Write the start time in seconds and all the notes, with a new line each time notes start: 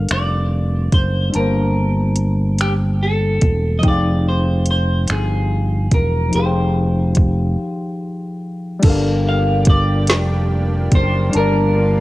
Already playing: G3 D4 A4 A#4 F5
0.09 F1 D5, finger snap, closed hi-hat
0.92 F#1 C5, kick, closed hi-hat
1.30 G3 D4, closed hi-hat
1.35 G1 A#3 A#4 A5
1.40 C5
2.16 closed hi-hat
2.58 G4, finger snap, closed hi-hat
3.03 A4
3.41 E1, kick, closed hi-hat
3.79 F3 D#4 D#5
3.83 F1 G5, kick, closed hi-hat
3.87 G#4 D5 F5
4.29 C5
4.66 closed hi-hat
4.71 C5
5.08 G1, finger snap, closed hi-hat
5.12 G#4
5.91 E1 A#4, kick, closed hi-hat
6.29 F3 D#4, closed hi-hat
6.34 F1 G4 G#4 C5
6.40 F5
6.46 G5
7.15 kick, closed hi-hat
8.80 G3 D4, kick, closed hi-hat, crash
8.84 G1 F3 G3 A#3 D4 G4 A4 A#4
8.90 F5
9.29 F5
9.65 kick, closed hi-hat
9.70 D5
10.08 F1, snare, closed hi-hat
10.92 F#1 C5, kick, closed hi-hat
11.30 G3 D4, closed hi-hat
11.34 G1 F4 A#4 A5
11.40 D5